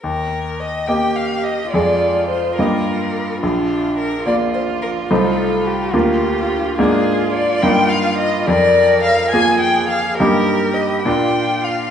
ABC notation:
X:1
M:6/8
L:1/16
Q:3/8=71
K:Eb
V:1 name="Violin"
B4 e2 g2 f2 e2 | d4 c2 B6 | F4 B2 d2 c2 B2 | =A4 G2 F6 |
A4 d2 g2 f2 e3/2 e/2 | d4 f2 a2 g2 f2 | B4 e2 g4 f2 |]
V:2 name="Cello"
z6 G6 | F12 | D6 F6- | F6 G6 |
F12 | B6 A6 | G6 F6 |]
V:3 name="Grand piano"
E,,6 [B,Ge]6 | [F,,A,Ad]6 [G,,B,Ge]6 | B,,,6 [B,Fd]6 | [C,,=A,Ec]6 [D,,B,FB]6 |
[A,,B,DB]6 [G,,B,EB]6 | F,,6 [B,FA]6 | [G,,B,EG]6 [B,,B,DF]6 |]